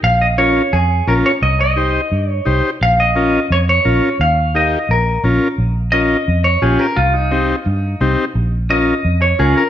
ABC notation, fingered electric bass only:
X:1
M:4/4
L:1/8
Q:1/4=173
K:Bbdor
V:1 name="Fingered electric bass" clef=bass
B,,,4 F,,2 B,,, z | C,,4 G,,2 C,, z | B,,,4 F,,2 B,,, z | E,,4 B,,,2 B,,, z |
B,,,4 F,,2 B,,, z | C,,4 G,,2 C,, z | B,,,4 F,,2 D,, z |]